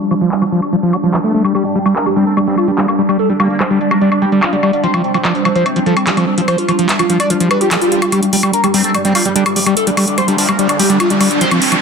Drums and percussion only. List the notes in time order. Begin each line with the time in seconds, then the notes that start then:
0.01 closed hi-hat
0.11 closed hi-hat, high woodblock
0.21 closed hi-hat
0.32 clap, closed hi-hat
0.42 closed hi-hat, high woodblock
0.52 closed hi-hat
0.62 closed hi-hat, high woodblock
0.73 closed hi-hat
0.83 closed hi-hat
0.93 closed hi-hat, high woodblock
1.03 closed hi-hat
1.14 clap, closed hi-hat, high woodblock
1.24 closed hi-hat
1.45 closed hi-hat, high woodblock
1.55 closed hi-hat, high woodblock
1.65 closed hi-hat
1.75 closed hi-hat
1.86 closed hi-hat, high woodblock
1.96 clap, closed hi-hat
2.06 closed hi-hat, high woodblock
2.16 closed hi-hat
2.27 closed hi-hat
2.37 closed hi-hat, high woodblock
2.47 closed hi-hat
2.58 closed hi-hat, high woodblock
2.68 closed hi-hat
2.78 clap, closed hi-hat
2.88 closed hi-hat, high woodblock
3.09 closed hi-hat, high woodblock
3.19 closed hi-hat
3.29 closed hi-hat
3.40 closed hi-hat, high woodblock
3.50 closed hi-hat
3.60 clap, closed hi-hat, high woodblock
3.71 closed hi-hat
3.81 closed hi-hat
3.91 closed hi-hat, high woodblock
4.01 closed hi-hat
4.12 closed hi-hat, high woodblock
4.22 closed hi-hat
4.32 closed hi-hat
4.42 clap, closed hi-hat, high woodblock
4.53 closed hi-hat
4.63 high woodblock
4.73 closed hi-hat
4.84 closed hi-hat
4.94 closed hi-hat, high woodblock
5.04 closed hi-hat
5.14 closed hi-hat, high woodblock
5.25 clap, closed hi-hat
5.35 closed hi-hat
5.45 closed hi-hat, high woodblock
5.56 closed hi-hat
5.66 closed hi-hat, high woodblock
5.76 closed hi-hat
5.86 closed hi-hat
5.97 closed hi-hat, high woodblock
6.07 clap, closed hi-hat
6.17 closed hi-hat, high woodblock
6.38 closed hi-hat
6.48 closed hi-hat, high woodblock
6.58 closed hi-hat
6.69 closed hi-hat, high woodblock
6.79 closed hi-hat
6.89 clap, closed hi-hat
6.99 closed hi-hat, high woodblock
7.10 closed hi-hat
7.20 closed hi-hat, high woodblock
7.30 closed hi-hat
7.40 closed hi-hat
7.51 closed hi-hat, high woodblock
7.61 closed hi-hat
7.71 clap, closed hi-hat, high woodblock
7.82 closed hi-hat
7.92 closed hi-hat
8.02 closed hi-hat, high woodblock
8.12 closed hi-hat, high woodblock
8.23 closed hi-hat
8.33 open hi-hat
8.43 high woodblock
8.53 closed hi-hat
8.64 closed hi-hat, high woodblock
8.74 open hi-hat
8.84 closed hi-hat
8.95 closed hi-hat, high woodblock
9.05 closed hi-hat
9.15 open hi-hat, high woodblock
9.25 closed hi-hat
9.36 closed hi-hat
9.46 closed hi-hat, high woodblock
9.56 open hi-hat
9.66 closed hi-hat, high woodblock
9.77 closed hi-hat
9.87 closed hi-hat
9.97 open hi-hat, high woodblock
10.08 closed hi-hat
10.18 closed hi-hat, high woodblock
10.28 closed hi-hat
10.38 open hi-hat
10.49 closed hi-hat, high woodblock
10.59 closed hi-hat
10.69 closed hi-hat, high woodblock
10.79 open hi-hat
10.90 closed hi-hat
11.00 closed hi-hat, high woodblock
11.10 closed hi-hat
11.21 open hi-hat, high woodblock
11.31 closed hi-hat
11.41 closed hi-hat
11.51 closed hi-hat, high woodblock
11.62 open hi-hat
11.72 closed hi-hat, high woodblock